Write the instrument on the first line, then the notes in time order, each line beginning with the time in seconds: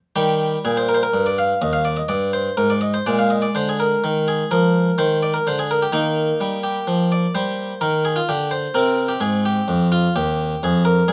harpsichord
0.16 D#3 G3 G4
0.65 A#2 G#4
0.77 C5
0.89 A#4
0.94 C5
1.03 A#4
1.14 G2
1.26 D5
1.38 F5
1.62 D#2 D#5
1.73 F5
1.85 D5
1.97 D#5
2.09 G2 D5
2.33 C5
2.57 G#2 A#4
2.70 D5
2.81 D#5
2.94 C5
3.06 A#2 G#3 D5
3.19 F5
3.30 D#5
3.42 D5
3.55 D3 C5
3.69 G#4
3.80 A#4
4.04 D#3
4.28 G#4
4.51 F3 A#4
4.98 D#3 C5
5.23 D5
5.34 A#4
5.47 D3 C5
5.59 G#4
5.71 A#4
5.82 G4
5.92 D#3 A#3 D#4
6.41 G3
6.63 G4
6.87 F3
7.12 D5
7.35 G3 C5
7.81 D#3 A#4
8.05 G#4
8.16 F4
8.29 D3 G4
8.51 C5
8.74 C3 C4 A#4
9.09 G4
9.20 G#2 G#4
9.45 G4
9.68 F2
9.92 F4
10.16 D#2 G4
10.63 F2 G#4
10.85 A#4
11.08 G2 G#4